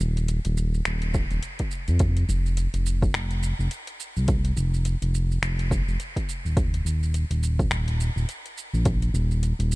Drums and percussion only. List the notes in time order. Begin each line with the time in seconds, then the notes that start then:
0.00 shaker
0.17 closed hi-hat, shaker
0.28 closed hi-hat, shaker
0.45 closed hi-hat, shaker
0.57 shaker
0.74 shaker
0.85 finger snap, closed hi-hat, shaker
1.02 closed hi-hat, shaker
1.14 kick, shaker
1.31 closed hi-hat, shaker
1.43 closed hi-hat, shaker
1.59 kick, closed hi-hat, shaker
1.71 shaker
1.88 closed hi-hat, shaker
1.99 kick, closed hi-hat, shaker
2.17 closed hi-hat, shaker
2.29 shaker
2.46 shaker
2.57 closed hi-hat, shaker
2.74 closed hi-hat, shaker
2.86 shaker
3.02 kick, shaker
3.14 finger snap, closed hi-hat, shaker
3.31 closed hi-hat, shaker
3.43 shaker
3.60 shaker
3.71 closed hi-hat, shaker
3.87 closed hi-hat, shaker
4.00 shaker
4.17 shaker
4.28 kick, closed hi-hat, shaker
4.45 closed hi-hat, shaker
4.57 shaker
4.74 shaker
4.85 closed hi-hat, shaker
5.02 closed hi-hat, shaker
5.15 shaker
5.32 shaker
5.43 finger snap, closed hi-hat, shaker
5.59 closed hi-hat, shaker
5.71 kick, shaker
5.88 shaker
6.00 closed hi-hat, shaker
6.16 kick, closed hi-hat, shaker
6.29 shaker
6.46 shaker
6.57 kick, closed hi-hat, shaker
6.74 closed hi-hat, shaker
6.86 shaker
7.03 shaker
7.14 closed hi-hat, shaker
7.31 closed hi-hat, shaker
7.43 shaker
7.59 kick, shaker
7.71 finger snap, closed hi-hat, shaker
7.88 closed hi-hat, shaker
8.00 shaker
8.18 shaker
8.29 closed hi-hat, shaker
8.46 closed hi-hat, shaker
8.57 shaker
8.74 shaker
8.85 kick, closed hi-hat, shaker
9.02 closed hi-hat, shaker
9.15 shaker
9.31 shaker
9.43 closed hi-hat, shaker
9.60 closed hi-hat, shaker
9.72 shaker